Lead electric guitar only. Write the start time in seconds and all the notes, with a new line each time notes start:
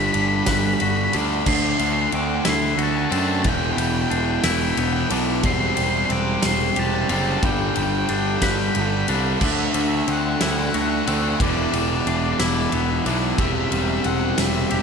0.07 B5
0.12 B5
0.22 B5
0.28 B5
0.36 B5
0.44 B5
0.51 B5
0.59 B5
0.66 B5
0.74 B5
0.82 B5
0.90 B5
0.97 B5
1.05 B5
1.48 C6
1.55 C6
1.62 C6
1.71 C6
1.79 C6
1.87 C6
1.93 C6
2.01 C6
2.15 D6
2.49 C6
2.83 A5
2.91 A5
2.98 A5
3.05 A5
3.12 A5
3.20 A5
3.27 A5
3.35 A5
3.42 A5
3.49 G5
3.56 G5
3.65 G5
3.72 G5
3.79 G5
3.87 G5
3.95 G5
4.02 G5
4.09 G5
4.17 G5
4.25 G5
4.32 G5
4.41 G5
4.48 G5
4.55 G5
4.62 G5
4.70 G5
4.79 G5
4.87 G5
4.93 G5
5.01 G5
5.46 C6
5.54 C6
5.60 C6
5.68 C6
5.75 C6
5.83 C6
5.90 C6
5.98 C6
6.05 C6
6.12 D6
6.46 C6
6.79 A5
6.87 A5
6.95 A5
7.02 A5
7.10 A5
7.18 A5
7.25 A5
7.32 A5
7.45 G5
7.52 G5
7.61 G5
7.67 G5
7.75 G5
7.83 G5
7.91 G5
7.98 G5
8.06 G5
8.14 G5
8.21 G5
8.28 G5
8.37 G5
8.44 G5
8.51 G5
8.59 G5
8.68 G5
8.76 G5
8.82 G5
8.90 G5
8.97 G5
9.44 E5
9.52 E5
9.59 E5
9.67 E5
9.74 E5
9.81 E5
9.88 E5
9.96 E5
10.03 E5
10.10 F#5
10.43 F#5
10.50 F#5
10.59 F#5
10.66 F#5
10.75 F#5
10.82 F#5
10.90 F#5
10.97 F#5
11.06 F#5
11.14 F#5
11.22 F#5
11.30 F#5
11.42 D5
11.51 D5
11.57 D5
11.64 D5
11.72 D5
11.79 D5
11.88 D5
11.95 D5
12.01 D5
12.09 D5
12.17 D5
12.24 D5
12.32 D5
12.40 D5
12.45 D5
12.55 D5
12.61 D5
13.40 E5
13.47 E5
13.55 E5
13.64 E5
13.71 E5
13.79 E5
13.87 E5
13.94 E5
14.06 F#5
14.39 E5
14.46 E5
14.54 E5
14.61 E5
14.70 E5
14.76 E5